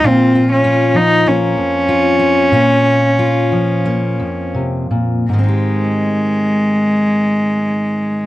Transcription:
<<
  \new Staff \with { instrumentName = "Cello" } { \time 4/4 \key aes \major \tempo 4 = 87 c'8. des'8. ees'8 des'2~ | des'2. r4 | aes1 | }
  \new Staff \with { instrumentName = "Steel-string acoustic guitar" } { \time 4/4 \key aes \major << { f'8 f'8 f'4 bes4 f'8 f'8 | f'4 f'4 bes2 | <ees c' ees' g'>1 | } \\ { bes,4. f4 f,4. | bes,4. f4 f,8 c8 bes,8 | aes,1 | } >> }
>>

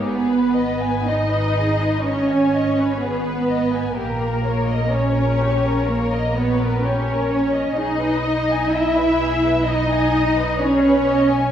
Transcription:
<<
  \new Staff \with { instrumentName = "Violin section" } { \time 4/4 \key gis \minor \tempo 4 = 63 b'4 dis''4 cis''4 b'4 | ais'4 cis''4 ais'8 b'8 cis''4 | dis''4 e''4 dis''4 cis''4 | }
  \new Staff \with { instrumentName = "Violin section" } { \time 4/4 \key gis \minor gis'16 b'16 dis''16 gis''16 dis''16 b'16 gis'16 b'16 dis''16 gis''16 dis''16 b'16 gis'16 b'16 dis''16 gis''16 | g'16 ais'16 cis''16 dis''16 cis''16 ais'16 g'16 ais'16 cis''16 dis''16 cis''16 ais'16 g'16 ais'16 cis''16 dis''16 | gis'16 b'16 dis''16 gis''16 dis''16 b'16 gis'16 b'16 dis''16 gis''16 dis''16 b'16 gis'16 b'16 dis''16 gis''16 | }
  \new Staff \with { instrumentName = "Cello section" } { \time 4/4 \key gis \minor b4 dis'4 cis'4 b4 | ais4 cis'4 ais8 b8 cis'4 | dis'4 e'4 dis'4 cis'4 | }
  \new Staff \with { instrumentName = "Viola section" } { \time 4/4 \key gis \minor b4 dis'4 cis'4 b4 | ais4 cis'4 ais8 b8 cis'4 | dis'4 e'4 dis'4 cis'4 | }
  \new Staff \with { instrumentName = "Double bass section" } { \clef bass \time 4/4 \key gis \minor gis,,1 | ais,,1 | b,,1 | }
>>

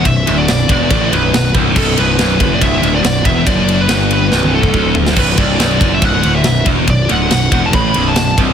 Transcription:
<<
  \new Staff \with { instrumentName = "Lead electric guitar" } { \time 4/4 \key b \phrygian \tempo 4 = 141 e''8. d''8. d''4 b'4 r8 | a'8 b'4~ b'16 d''16 e''8. d''8. e''8 | d''8. b'8. b'4 a'4 r8 | b'8 d''4~ d''16 e''16 fis''8. e''8. r8 |
d''8 fis''4~ fis''16 a''16 b''8. a''8. r8 | }
  \new Staff \with { instrumentName = "Distorted electric guitar" } { \clef bass \time 4/4 \key b \phrygian b,,8 d,8 b,,8 e,8 a,8 b,,8 b,,8 c,8 | b,,8 c,8 b,,8 fis,8 c,8 d,8 b,,8 e,8 | fis,4 g,4 c,4 d,4 | b,,8 c,8 b,,8 fis,8 c,8 d,8 b,,8 e,8 |
b,,8 d,8 b,,8 e,8 a,8 b,,8 b,,8 c,8 | }
  \new Staff \with { instrumentName = "Distorted electric guitar" } { \clef bass \time 4/4 \key b \phrygian b,,8 d,8 b,,8 e,8 a,8 b,,8 b,,8 c,8 | b,,8 c,8 b,,8 fis,8 c,8 d,8 b,,8 e,8 | fis,4 g,4 c,4 d,4 | b,,8 c,8 b,,8 fis,8 c,8 d,8 b,,8 e,8 |
b,,8 d,8 b,,8 e,8 a,8 b,,8 b,,8 c,8 | }
  \new Staff \with { instrumentName = "Distorted electric guitar" } { \clef bass \time 4/4 \key b \phrygian b,,8 d,8 b,,8 e,8 a,8 b,,8 b,,8 c,8 | b,,8 c,8 b,,8 fis,8 c,8 d,8 b,,8 e,8 | fis,4 g,4 c,4 d,4 | b,,8 c,8 b,,8 fis,8 c,8 d,8 b,,8 e,8 |
b,,8 d,8 b,,8 e,8 a,8 b,,8 b,,8 c,8 | }
  \new Staff \with { instrumentName = "Picked electric bass" } { \clef bass \time 4/4 \key b \phrygian b,,,8 d,,8 b,,,8 e,,8 a,,8 b,,,8 b,,,8 c,,8 | b,,,8 c,,8 b,,,8 fis,,8 c,,8 d,,8 b,,,8 e,,8 | fis,,4 g,,4 c,,4 d,,4 | b,,,8 c,,8 b,,,8 fis,,8 c,,8 d,,8 b,,,8 e,,8 |
b,,,8 d,,8 b,,,8 e,,8 a,,8 b,,,8 b,,,8 c,,8 | }
  \new DrumStaff \with { instrumentName = "Drums" } \drummode { \time 4/4 <bd cymr>8 cymr8 <cymr sn>8 <bd cymr>8 <bd cymr>8 cymr8 <cymr sn>8 <bd cymr>8 | <cymc bd>8 cymr8 <cymr sn>8 <bd cymr>8 <bd cymr>8 cymr8 <cymr sn>8 <bd cymr>8 | <bd cymr>8 cymr8 <cymr sn>8 cymr8 sn16 tommh8 bd16 bd8 tomfh16 sn16 | <cymc bd>8 <bd cymr>8 <cymr sn>8 <bd cymr>8 <bd cymr>8 cymr8 <cymr sn>8 <bd cymr>8 |
<bd cymr>8 cymr8 <cymr sn>8 <bd cymr>8 <bd cymr>8 cymr8 <cymr sn>8 <bd cymr>8 | }
>>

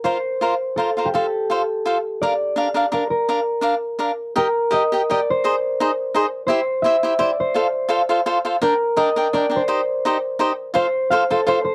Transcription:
<<
  \new Staff \with { instrumentName = "Harp" } { \time 3/4 \key f \mixolydian \tempo 4 = 169 c''2 a'8. g'16 | a'2 r4 | d''2 bes'8 bes'8~ | bes'2~ bes'8 r8 |
bes'4 ees''4 d''8 c''8~ | c''4. r4. | c''4 e''4 d''8 c''8~ | c''4. r4. |
bes'4 ees''4 d''8 c''8~ | c''4. r4. | c''4 f''8 a'8 c''8 c''8 | }
  \new Staff \with { instrumentName = "Cavaquinho" } { \time 3/4 \key f \mixolydian <f' bes' c'' f''>8 r8 <f' bes' c'' f''>8 r8 <f' bes' c'' f''>8 <f' bes' c'' f''>8 | <f' a' c'' f''>8 r8 <f' a' c'' f''>8 r8 <f' a' c'' f''>8 r8 | <d' bes' d'' f''>8 r8 <d' bes' d'' f''>8 <d' bes' d'' f''>8 <d' bes' d'' f''>8 r8 | <d' bes' d'' f''>8 r8 <d' bes' d'' f''>8 r8 <d' bes' d'' f''>8 r8 |
<g' bes' ees'' g''>8 r8 <g' bes' ees'' g''>8 <g' bes' ees'' g''>8 <g' bes' ees'' g''>8 r8 | <ees' aes' c'' ees''>8 r8 <ees' aes' c'' ees''>8 r8 <ees' aes' c'' ees''>8 r8 | <e' g' c'' e''>8 r8 <e' g' c'' e''>8 <e' g' c'' e''>8 <e' g' c'' e''>8 r8 | <f' a' c'' f''>8 r8 <f' a' c'' f''>8 <f' a' c'' f''>8 <f' a' c'' f''>8 <f' a' c'' f''>8 |
<d' bes' d'' g''>8 r8 <d' bes' d'' g''>8 <d' bes' d'' g''>8 <d' bes' d'' g''>8 <d' bes' d'' g''>8 | <ees' g' c'' ees''>8 r8 <ees' g' c'' ees''>8 r8 <ees' g' c'' ees''>8 r8 | <f' a' c'' f''>8 r8 <f' a' c'' f''>8 <f' a' c'' f''>8 <f' a' c'' f''>8 r8 | }
>>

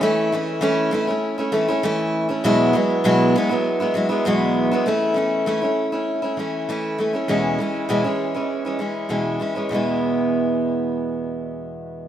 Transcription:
\new Staff \with { instrumentName = "Steel-string acoustic guitar" } { \time 4/4 \key e \major \tempo 4 = 99 <e a cis' e'>8 <e a cis' e'>8 <e a cis' e'>8 <e a cis' e'>16 <a cis' e'>8 <a cis' e'>16 <e a cis' e'>16 <a cis' e'>16 <e a cis' e'>8. <a cis' e'>16 | <e, b, fis gis b e'>8 <fis gis b e'>8 <e, b, fis gis b e'>8 <fis gis b e'>16 <fis gis b e'>8 <fis gis b e'>16 <fis gis b e'>16 <fis gis b e'>16 <e, b, fis gis b e'>8. <fis gis b e'>16 | <e a cis' e'>8 <e a cis' e'>8 <e a cis' e'>16 <a cis' e'>8 <a cis' e'>8 <a cis' e'>16 <e a cis' e'>8 <e a cis' e'>8 <e a cis' e'>16 <a cis' e'>16 | <e, b, e gis cis' e'>8 <e gis cis' e'>8 <e, b, e gis cis' e'>16 <e gis cis' e'>8 <e gis cis' e'>8 <e gis cis' e'>16 <e gis cis' e'>8 <e, b, e gis cis' e'>8 <e gis cis' e'>16 <e gis cis' e'>16 |
<e, b, e gis b e'>1 | }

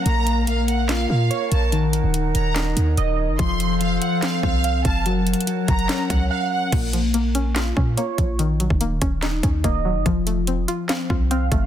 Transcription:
<<
  \new Staff \with { instrumentName = "Violin section" } { \time 4/4 \key bes \minor \tempo 4 = 144 bes''4 f''8 ges''8 f''8 f''4 a''8 | r4. bes''8 r2 | c'''4 f''8 ges''8 f''8 f''4 a''8 | r4. bes''4 ges''8 f''8 ges''8 |
r1 | r1 | r1 | }
  \new Staff \with { instrumentName = "Flute section" } { \time 4/4 \key bes \minor << { <des'' f''>1 | <ees' des'' ges''>1 | <c'' f''>1 | <des'' ges''>1 |
r1 | r1 | r1 | } \\ { bes'1~ | bes'1 | a'1 | bes'1 |
r1 | r1 | r1 | } >> }
  \new Staff \with { instrumentName = "Synth keys" } { \time 4/4 \key bes \minor bes4 bes4 f'4 des''4 | ees4 ees4 ees'4 ees''4 | f4 f4 c'4 f''4 | ges4 ges4 des'4 ges''4 |
bes4 bes4 f'4 des''4 | ees4 ees4 ees'4 ees''4 | f4 f4 c'4 f''4 | }
  \new Staff \with { instrumentName = "Synth pluck" } { \time 4/4 \key bes \minor r1 | r1 | r1 | r1 |
bes,8 f8 bes8 des'8 f'8 des'8 bes8 f8 | ees8 ges8 bes8 des'8 ees'8 des'8 bes8 ges8 | f8 a8 c'8 f'8 f''8 f'8 c'8 a8 | }
  \new Staff \with { instrumentName = "808-style bass" } { \clef bass \time 4/4 \key bes \minor bes,,2~ bes,,8 bes,8 r8 bes,,8~ | bes,,8. ees,,8. ees,,4 ees,8 ees,,8. ges,,16 | f,,4. r4 c,4 ges,,8~ | ges,,8. r8. ges,,8 r8 des,8 r4 |
bes,,2~ bes,,8 bes,8 r8 bes,,8~ | bes,,8. ees,,8. ees,,4 ees,8 ees,,8. ges,,16 | f,,4. r4 c,4 ges,,8 | }
  \new DrumStaff \with { instrumentName = "Drums" } \drummode { \time 4/4 hh8 hh8 hh8 hh8 <hc hh sn>4 hh8 hh8 | hh8 hh8 hh8 hh8 <hc hh sn>8 hh8 hh4 | <hh bd>8 hh8 hh8 hh8 <hc hh sn>8 bd8 hh8 <hh bd>8 | \tuplet 3/2 { hh16 r16 r16 hh16 hh16 hh16 } hh8 <hh bd>16 hh16 <hc hh sn>8 <hh bd>8 r4 |
<cymc hh bd>8 hh8 hh8 hh8 <hc hh sn>8 bd8 hh8 <hh bd>8 | hh8 hh16 bd16 hh8 <hh bd>8 <hc hh sn>8 <hh bd>8 <hh bd>4 | <hh bd>8 hh8 hh8 hh8 <hc hh sn>8 bd8 hh8 <hh bd>8 | }
>>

